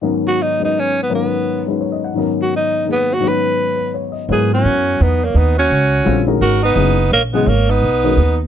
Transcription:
0.01 grand piano G#2 D#3 F#3 B3 C#4 A#4
0.28 tenor saxophone F#4
0.42 tenor saxophone D#4
0.59 grand piano F#3 G#3 C#4 D#4 B4
0.65 tenor saxophone D#4
0.80 tenor saxophone C#4
1.03 tenor saxophone B3
1.09 grand piano G#2 D#3 F#3 B3 C#4 A#4
1.15 tenor saxophone B3
1.67 grand piano F#3 G#3 C#4 D#4 B4
1.81 grand piano C#5
1.92 grand piano D#5
2.04 grand piano F#5
2.14 grand piano G#2 D#3 F#3 B3 C#4
2.19 grand piano A#4
2.42 tenor saxophone F#4
2.56 tenor saxophone D#4
2.85 grand piano D#3 A#3 G#4
2.92 tenor saxophone B3
3.14 tenor saxophone F#4
3.19 grand piano G#2 D#3 F#3 B3
3.24 grand piano C#4 B4
3.28 tenor saxophone B4
3.76 grand piano B4
3.94 grand piano C#5
4.12 grand piano D#5
4.29 upright bass G#2, grand piano F#3 B3 E4 A#4 C#5, tenor saxophone G#4, alto saxophone B4
4.53 tenor saxophone C#4, alto saxophone F#4
4.64 upright bass F#2
5.00 upright bass E2, tenor saxophone B3, alto saxophone D#4
5.24 tenor saxophone A#3, alto saxophone C#4
5.34 upright bass D#2, tenor saxophone B3, alto saxophone D#4
5.58 tenor saxophone C#4, alto saxophone F#4
5.70 upright bass C#2
6.04 upright bass A#1, grand piano D3 G3 C4 F4 A4
6.27 grand piano D#3 G#3 C#4 F#4 A#4
6.41 upright bass G#1, tenor saxophone F#4, alto saxophone A#4
6.62 tenor saxophone B3, alto saxophone D#4
6.75 upright bass F#1, grand piano C#3 F#3 B3 E4 G#4
7.11 upright bass A#1, tenor saxophone A#3, alto saxophone C#4
7.33 grand piano C#3 F#3 B3 E4 G#4, tenor saxophone G#3, alto saxophone B3
7.46 upright bass G#1, tenor saxophone A#3, alto saxophone C#4
7.69 tenor saxophone B3, alto saxophone D#4
7.82 upright bass B1
8.04 grand piano D#3 G#3 C#4 F#4 A#4
8.17 upright bass D#2

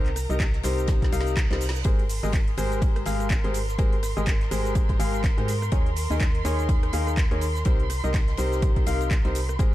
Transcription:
Already playing: fm bass C2, violin section A#4 A#5
0.06 clap, closed hi-hat
0.16 cross-stick, open hi-hat, ride, cabasa
0.30 fm bass C2, upright piano C3 D#4 G4 A#4 D#5, closed hi-hat, cabasa
0.40 kick, snare, clap, closed hi-hat, ride, cabasa
0.53 snare, closed hi-hat
0.63 fm bass C2, upright piano C3 D#4 G4 A#4 C5, snare, open hi-hat, ride, cabasa
0.78 closed hi-hat, cabasa
0.87 kick, snare, closed hi-hat, ride, reverse cymbal, cabasa
1.02 kick, snare, closed hi-hat
1.12 fm bass C2, upright piano C3 D#4 G4 A#4 F5, open hi-hat, ride, cabasa
1.21 snare
1.27 closed hi-hat, cabasa
1.37 kick, snare, clap, closed hi-hat, ride, cabasa
1.50 fm bass C2, upright piano C3 D#4 G4 A#4 C5, snare, closed hi-hat
1.61 open hi-hat, cabasa
1.69 snare
1.75 snare, closed hi-hat, cabasa
1.85 fm bass G#1, upright piano G#3 G4 G#4 A#4 C5, violin section A#4 C6, kick, closed hi-hat, ride, cabasa
1.99 closed hi-hat
2.09 open hi-hat, cabasa
2.23 fm bass G#1, upright piano G#3 G4 G#4 A#4 D#5, snare, closed hi-hat, cabasa
2.33 kick, snare, clap, closed hi-hat, ride, cabasa
2.48 closed hi-hat
2.57 fm bass G#1, upright piano G#3 G4 G#4 A#4 C5, open hi-hat, ride, cabasa
2.72 closed hi-hat, cabasa
2.82 kick, closed hi-hat, ride, cabasa
2.96 cross-stick, closed hi-hat, ride
3.05 fm bass G#1, upright piano G#3 G4 G#4 A#4 F5, open hi-hat, ride, cabasa
3.20 cross-stick, closed hi-hat, cabasa
3.29 kick, snare, clap, closed hi-hat, ride, cabasa
3.44 fm bass G#1, upright piano G#3 G4 G#4 A#4 C5, closed hi-hat
3.54 open hi-hat, ride, cabasa
3.68 snare, closed hi-hat, cabasa
3.79 fm bass G#1, upright piano G#3 G4 G#4 A#4 C5, kick, closed hi-hat, ride, cabasa
3.93 closed hi-hat
4.03 cross-stick, open hi-hat, ride, cabasa
4.17 fm bass G#1, upright piano G#3 G4 G#4 A#4 D#5, closed hi-hat, cabasa
4.26 kick, snare, clap, closed hi-hat, ride, cabasa
4.41 snare, closed hi-hat
4.51 fm bass G#1, upright piano G#3 G4 G#4 A#4 C5, open hi-hat, ride, cabasa
4.65 snare, closed hi-hat, cabasa
4.75 kick, closed hi-hat, ride, cabasa
4.89 kick, closed hi-hat, ride
4.99 fm bass G#1, upright piano G#3 G4 G#4 A#4 F5, open hi-hat, ride, cabasa
5.14 closed hi-hat, ride, cabasa
5.24 kick, snare, clap, closed hi-hat, ride, cabasa
5.38 fm bass G#2, upright piano G#3 G4 G#4 A#4 C5, closed hi-hat
5.48 snare, open hi-hat, ride, cabasa
5.62 cross-stick, closed hi-hat, cabasa
5.72 fm bass D#2, upright piano D#3 D#4 G#4 A#4 C#5, kick, closed hi-hat, ride, cabasa
5.86 closed hi-hat
5.96 open hi-hat, cabasa
6.10 fm bass D#2, upright piano D#3 D#4 G#4 A#4 D#5, snare, closed hi-hat, cabasa
6.20 kick, snare, clap, closed hi-hat, ride, cabasa
6.35 closed hi-hat
6.45 fm bass D#2, upright piano D#3 D#4 G#4 A#4 C#5, open hi-hat, ride, cabasa
6.59 closed hi-hat, cabasa
6.69 kick, closed hi-hat, ride, cabasa
6.83 cross-stick, closed hi-hat, ride
6.93 fm bass D#2, upright piano D#3 D#4 G#4 A#4 F5, open hi-hat, ride, cabasa
7.07 cross-stick, closed hi-hat, cabasa
7.17 kick, snare, clap, closed hi-hat, ride, cabasa
7.31 fm bass D#2, upright piano D#3 D#4 G#4 A#4 C#5, closed hi-hat
7.41 open hi-hat, ride, cabasa
7.55 snare, closed hi-hat, cabasa
7.65 fm bass C2, upright piano C3 D#4 G4 A#4 C5, kick, closed hi-hat, ride, cabasa
7.80 closed hi-hat
7.90 cross-stick, open hi-hat, ride, cabasa
8.04 fm bass C2, upright piano C3 D#4 G4 A#4 D#5, closed hi-hat, cabasa
8.14 kick, snare, clap, closed hi-hat, ride, cabasa
8.28 snare, closed hi-hat
8.37 fm bass C2, upright piano C3 D#4 G4 A#4 C5, open hi-hat, ride, cabasa
8.52 snare, closed hi-hat, cabasa
8.62 kick, closed hi-hat, ride, cabasa
8.76 kick, closed hi-hat, ride
8.87 fm bass C2, upright piano C3 D#4 G4 A#4 F5, open hi-hat, ride, cabasa
9.01 closed hi-hat, ride, cabasa
9.10 kick, snare, clap, closed hi-hat, ride, cabasa
9.25 fm bass C2, upright piano C3 D#4 G4 A#4 C5, closed hi-hat
9.35 snare, open hi-hat, ride, cabasa
9.49 cross-stick, closed hi-hat, cabasa
9.59 fm bass G#1, upright piano G#3 G4 G#4 A#4 C5, kick, closed hi-hat, ride, cabasa

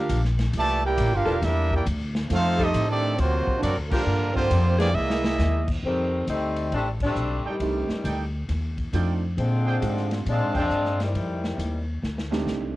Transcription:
Already playing: trombone section A#3 D4 F4, trumpet section A#4 F5
0.00 trumpet section D4 G4
0.09 upright bass A#1, kick, hi-hat pedal, ride
0.25 snare
0.39 snare, ride
0.53 upright bass C2, trombone section A#2 E3 A3, kick, ride
0.57 trumpet section G4 D5 E5 A5
0.85 trombone section A#3 E4 G4, trumpet section E4 A#4 D5 G5
0.98 upright bass A1, kick, hi-hat pedal, ride
1.12 upright bass G1, trumpet section D4 G4 A#4 F5, trombone section F4
1.26 upright bass E1, saxophone section E3 A#3 D4 A4
1.42 upright bass E2, trombone section G3 A#3 E4, trumpet section D4 G4 A#4 E5, kick, snare, ride
1.71 trombone section A#3 E4 G4, trumpet section D5 G5, kick
1.75 trumpet section E4 A#4
1.86 upright bass D2, kick, hi-hat pedal, ride
2.15 snare
2.30 upright bass F2, trombone section A3 C4 F4, trumpet section D#4 A4 C5 F5, kick, snare, ride
2.58 saxophone section G3 D4 D#4 A4, trombone section A3 C4 D#4, kick
2.62 trumpet section C4 G4 A4 D#5
2.74 upright bass A2, kick, hi-hat pedal, ride
2.87 trombone section D#3 A3 D4, trumpet section C4 G4 A4 D5
3.16 upright bass D2, trombone section C3 F#3 C4, trumpet section A#3 F4 F#4 C5, kick, ride
3.47 muted upright bass stroke, kick
3.59 upright bass F#2, trombone section F#3 A#3 D4, kick, hi-hat pedal, ride
3.63 trumpet section C4 F#4 A#4 D5
3.77 upright bass D2
3.88 upright bass C2, trombone section D3 F3 A#3, trumpet section G3 D4 F4 A#4, kick, crash
3.92 saxophone section F3 A#3 D4 G4
4.06 upright bass G2
4.33 trombone section D3 F3 C4, trumpet section A#3 F4 G4 C5, kick
4.50 upright bass F2, kick, hi-hat pedal, ride
4.77 saxophone section E3 A#3 C4 G#4, trombone section F3 A#3 D4, trumpet section A#3 F4 G4 D5, snare, ride
4.93 upright bass C2, trombone section G#3 A#3 E4, trumpet section A#3 G#4 D#5 E5
5.10 snare
5.24 snare
5.38 upright bass D#2, snare, hi-hat pedal
5.68 kick, crash
5.83 upright bass F2, saxophone section D#3 G3 A3 C4, kick
6.27 upright bass D2, saxophone section G3 A3 C4 D#4, kick, hi-hat pedal, ride
6.56 ride
6.71 upright bass A1, saxophone section G3 A3 C4 D4, kick, ride
7.00 saxophone section G3 A3 C4 D4, kick, crash
7.16 upright bass B1, hi-hat pedal
7.44 saxophone section D#3, trumpet section D#4 A4 D5 G5, muted upright bass stroke
7.49 saxophone section A2 C3 G3
7.60 upright bass C2, grand piano A3 C4 D4 D#4 G4, kick, ride
7.89 muted upright bass stroke, snare
8.04 upright bass D2, trumpet section D#4 A4 D5 G5, kick, hi-hat pedal, ride
8.49 upright bass D#2, kick, snare, ride
8.78 kick, ride
8.93 upright bass F2, grand piano A3 C4 D4 D#4 F4, trumpet section D#4 A4 D5 G5, kick, hi-hat pedal, ride
9.37 upright bass A#2, saxophone section D3 F3 G#3 C4, kick, ride
9.67 trumpet section D4 G#4 C5 G5
9.81 upright bass G#2, grand piano G#3 C4 D4 F4 G4, kick, hi-hat pedal, ride
9.97 snare
10.11 snare, ride
10.26 upright bass A#2, saxophone section F3 G#3 C4 D4, kick, ride
10.40 upright bass G#2
10.55 upright bass F2, saxophone section F3 G#3 C4 D4, trumpet section D4 G#4 C5 G5, kick, crash
10.70 upright bass G2, hi-hat pedal
10.85 snare
11.00 saxophone section A2 C3 D#3 G3, snare, ride
11.14 upright bass F2, kick, ride
11.44 snare
11.58 upright bass D#2, kick, hi-hat pedal, ride
12.02 upright bass D2, snare
12.18 snare
12.31 grand piano A3 C4 D4 D#4 G4, snare
12.47 upright bass C2, snare, hi-hat pedal

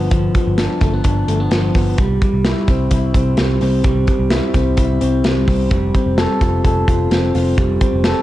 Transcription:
Already playing: clean electric guitar F3 B3 D4
0.11 picked electric bass G1, clean electric guitar F3, kick, closed hi-hat
0.35 clean electric guitar F3, kick, closed hi-hat
0.47 picked electric bass G1
0.58 clean electric guitar D4, snare, closed hi-hat
0.81 picked electric bass G1, clean electric guitar A3, kick, closed hi-hat
0.93 clean electric guitar B3
1.04 picked electric bass G1, clean electric guitar D4, kick, closed hi-hat
1.28 picked electric bass G1, clean electric guitar A3, closed hi-hat
1.40 clean electric guitar B3
1.51 picked electric bass G1, clean electric guitar F3, snare, closed hi-hat
1.75 picked electric bass G1, clean electric guitar B3, kick, open hi-hat
1.98 picked electric bass C2, clean electric guitar G3, kick, closed hi-hat
2.22 clean electric guitar G3, kick, closed hi-hat
2.34 picked electric bass C2
2.45 clean electric guitar E4, snare, closed hi-hat
2.68 picked electric bass C2, clean electric guitar C4, kick, closed hi-hat
2.91 picked electric bass C2, clean electric guitar E4, kick, closed hi-hat
3.14 picked electric bass C2, clean electric guitar C4, kick, closed hi-hat
3.37 picked electric bass C2, clean electric guitar G3, snare, closed hi-hat
3.61 picked electric bass C2, clean electric guitar C4, open hi-hat
3.84 picked electric bass C2, clean electric guitar G3, kick, closed hi-hat
4.07 clean electric guitar G3, kick, closed hi-hat
4.19 picked electric bass C2
4.30 clean electric guitar E4, snare, closed hi-hat
4.54 picked electric bass C2, clean electric guitar C4, kick, closed hi-hat
4.77 picked electric bass C2, clean electric guitar E4, kick, closed hi-hat
5.01 picked electric bass C2, clean electric guitar C4, closed hi-hat
5.24 picked electric bass C2, clean electric guitar G3, snare, closed hi-hat
5.48 picked electric bass C2, clean electric guitar C4, kick, open hi-hat
5.71 picked electric bass F1, clean electric guitar G3, kick, closed hi-hat
5.95 clean electric guitar C4, kick, closed hi-hat
6.06 picked electric bass F1
6.18 clean electric guitar A4, snare, closed hi-hat
6.41 picked electric bass F1, clean electric guitar F4, kick, closed hi-hat
6.64 picked electric bass F1, clean electric guitar A4, kick, closed hi-hat
6.88 picked electric bass F1, clean electric guitar F4, kick, closed hi-hat
7.11 picked electric bass F1, clean electric guitar C4, snare, closed hi-hat
7.35 picked electric bass F1, clean electric guitar F4, open hi-hat
7.58 picked electric bass F1, clean electric guitar G3, kick, closed hi-hat
7.81 clean electric guitar C4, kick, closed hi-hat
7.93 picked electric bass F1
8.04 clean electric guitar A4, snare, closed hi-hat

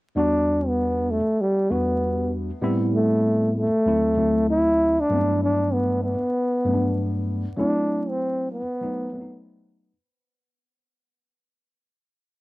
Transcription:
0.15 tine electric piano E2 G3 B3 D4 F#4, trombone D4
0.68 trombone B3
1.11 trombone A3
1.41 trombone G3
1.69 tine electric piano E2 G3 B3 D4 F#4, trombone B3
2.61 tine electric piano A2 G3 B3 C4 E4
2.95 trombone A3
3.57 trombone A3
3.85 tine electric piano D2 F#3 A3 C4 E4
4.16 tine electric piano D2 F#3 A3 C4 E4
4.50 trombone E4
5.00 trombone D4
5.09 tine electric piano G2 F#3 A3 B3 C4
5.18 tine electric piano D4
5.43 trombone D4
5.73 trombone B3
6.04 trombone B3
6.65 tine electric piano G2 F#3 A3 B3 C#4
6.73 tine electric piano D4
7.57 tine electric piano F#3 A3 C4 E4, trombone D4
8.09 trombone C4
8.52 trombone B3
8.81 tine electric piano F#3 A3 B3 D#4
9.12 tine electric piano F#3 A3 B3 C4
9.21 tine electric piano D#4

